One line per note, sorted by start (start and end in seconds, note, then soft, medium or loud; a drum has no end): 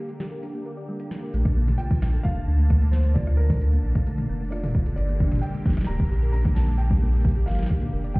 0.00 1.30 D3 medium
0.00 1.30 A#3 medium
0.00 1.30 G4 medium
0.09 0.15 G4 medium
0.09 closed hi-hat medium
0.20 0.26 G4 medium
0.20 snare loud
0.32 0.38 A#4 medium
0.43 0.49 D4 medium
0.43 closed hi-hat medium
0.54 0.58 A#3 medium
0.66 0.69 A#4 loud
0.66 closed hi-hat soft
0.77 0.83 D5 loud
0.89 0.95 G3 loud
1.00 1.06 D4 medium
1.00 closed hi-hat medium
1.11 1.20 D4 medium
1.11 snare loud
1.23 1.32 A#4 medium
1.34 1.74 A#1 loud
1.34 8.20 D3 medium
1.34 1.38 A3 loud
1.34 4.94 A#3 medium
1.34 4.94 A5 medium
1.34 closed hi-hat medium
1.45 1.49 A3 medium
1.45 kick loud
1.45 cross-stick medium
1.45 closed hi-hat soft
1.57 1.66 A#3 loud
1.68 1.74 A3 medium
1.68 mid tom medium
1.68 open hi-hat medium
1.78 1.88 F4 medium
1.78 2.25 G5 loud
1.78 closed hi-hat medium
1.91 1.97 F4 medium
1.91 kick loud
1.91 closed hi-hat soft
2.02 2.19 A#1 medium
2.02 2.08 F4 medium
2.02 cross-stick medium
2.02 snare loud
2.14 2.20 A4 medium
2.14 closed hi-hat soft
2.23 2.41 F1 loud
2.23 2.31 D4 medium
2.23 2.94 F5 loud
2.23 kick loud
2.23 closed hi-hat medium
2.36 2.40 A#3 medium
2.47 3.79 D2 medium
2.47 2.57 D4 medium
2.59 2.65 A3 medium
2.59 closed hi-hat soft
2.70 2.74 A3 loud
2.70 kick loud
2.70 cross-stick medium
2.70 closed hi-hat medium
2.82 2.85 A3 medium
2.82 closed hi-hat medium
2.92 3.02 A#3 loud
2.92 3.16 C5 medium
2.92 snare loud
3.04 3.10 A3 medium
3.04 closed hi-hat medium
3.14 3.25 F4 medium
3.14 3.38 D5 loud
3.14 kick loud
3.14 closed hi-hat medium
3.27 3.33 F4 medium
3.27 cross-stick medium
3.27 closed hi-hat soft
3.37 3.44 F4 medium
3.37 4.25 A#4 medium
3.50 3.56 A4 medium
3.50 kick loud
3.50 mid tom medium
3.50 open hi-hat medium
3.61 3.67 D4 medium
3.61 closed hi-hat medium
3.73 3.76 A#3 medium
3.73 closed hi-hat soft
3.84 4.01 A#1 medium
3.84 3.93 D4 medium
3.95 4.01 A3 medium
3.95 kick loud
3.95 cross-stick medium
3.95 closed hi-hat soft
4.07 4.10 A3 loud
4.07 closed hi-hat medium
4.18 4.22 A3 medium
4.18 closed hi-hat soft
4.18 mid tom medium
4.29 4.93 F1 medium
4.29 4.38 A#3 loud
4.41 4.47 A3 medium
4.41 closed hi-hat soft
4.45 closed hi-hat soft
4.48 4.95 D5 medium
4.48 cross-stick medium
4.48 closed hi-hat soft
4.52 4.61 F4 medium
4.52 closed hi-hat medium
4.56 closed hi-hat soft
4.60 closed hi-hat soft
4.64 4.70 F4 medium
4.64 closed hi-hat medium
4.64 mid tom loud
4.66 closed hi-hat soft
4.68 closed hi-hat soft
4.70 closed hi-hat soft
4.73 4.81 F4 medium
4.73 kick loud
4.73 closed hi-hat soft
4.86 4.92 A4 medium
4.86 closed hi-hat medium
4.96 5.38 G1 loud
4.96 8.20 A#3 medium
4.96 5.04 D4 medium
4.96 8.20 G4 medium
4.96 5.44 D5 medium
4.96 closed hi-hat medium
5.09 5.13 A#3 medium
5.09 closed hi-hat soft
5.20 5.29 D4 medium
5.20 kick loud
5.20 cross-stick medium
5.24 cross-stick soft
5.28 cross-stick soft
5.32 5.38 G3 medium
5.32 cross-stick soft
5.32 mid tom medium
5.32 open hi-hat medium
5.35 cross-stick soft
5.35 open hi-hat medium
5.39 5.89 G5 loud
5.39 cross-stick soft
5.39 closed hi-hat medium
5.39 open hi-hat medium
5.43 5.47 G3 loud
5.43 open hi-hat soft
5.47 open hi-hat soft
5.50 5.58 G3 medium
5.50 closed hi-hat soft
5.50 open hi-hat soft
5.66 5.82 G1 medium
5.66 5.75 A#3 loud
5.66 kick loud
5.66 snare medium
5.69 snare medium
5.73 cross-stick medium
5.73 snare medium
5.77 5.83 G3 medium
5.77 snare medium
5.81 snare loud
5.81 closed hi-hat soft
5.85 6.05 D1 loud
5.85 5.97 G4 medium
5.85 6.31 A#5 loud
5.85 snare loud
6.00 6.06 G4 medium
6.00 kick loud
6.11 7.43 A#1 medium
6.11 6.17 G4 medium
6.22 6.29 A#4 medium
6.22 closed hi-hat soft
6.32 6.40 D4 medium
6.32 6.54 A#5 loud
6.32 closed hi-hat medium
6.45 6.49 A#3 medium
6.45 kick loud
6.45 cross-stick medium
6.45 closed hi-hat medium
6.55 6.66 D4 medium
6.55 6.79 A5 medium
6.55 snare loud
6.68 6.74 G3 medium
6.68 closed hi-hat medium
6.78 6.83 G3 loud
6.78 7.49 G5 loud
6.78 closed hi-hat medium
6.91 6.94 G3 medium
6.91 kick loud
7.02 7.11 A#3 loud
7.13 7.19 G3 medium
7.13 open hi-hat soft
7.21 7.34 G4 medium
7.21 kick loud
7.21 closed hi-hat medium
7.21 open hi-hat medium
7.28 open hi-hat medium
7.36 7.42 G4 medium
7.36 closed hi-hat soft
7.46 7.64 G1 medium
7.46 7.53 G4 medium
7.46 8.17 F5 loud
7.46 snare medium
7.51 snare medium
7.55 7.65 A#4 medium
7.55 snare medium
7.59 snare medium
7.59 closed hi-hat soft
7.63 snare loud
7.66 7.76 D4 medium
7.66 kick loud
7.66 snare loud
7.70 cross-stick medium
7.70 closed hi-hat medium
7.81 7.85 A#3 medium
7.81 closed hi-hat soft
7.81 mid tom medium
7.93 8.20 F1 loud
7.93 7.97 A#4 loud
8.04 8.10 D5 loud
8.04 closed hi-hat soft
8.14 8.20 G3 loud
8.14 8.20 G5 loud
8.14 kick loud
8.14 closed hi-hat medium